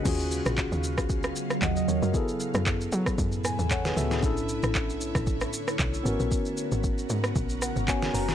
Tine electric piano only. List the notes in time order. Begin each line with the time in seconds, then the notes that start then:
0.03 C#4 F4 F#4
0.08 G#4
1.62 D#5 F#5
1.77 D#5
1.88 A#4 C#5
2.03 F#4 A#4
2.12 B3 E4 G#4
2.17 A4
3.45 G#5
3.71 A4 C#5 F#5
3.85 G#4 B4
3.97 F#4 A4 E5
4.12 E4 G#4
4.21 C#4 D4 E4
4.26 A4
6.03 B3 C#4 F#4
6.08 A#4
7.62 F#5
7.87 B3 C#4 F#4 C#5 G#5
8.14 A#5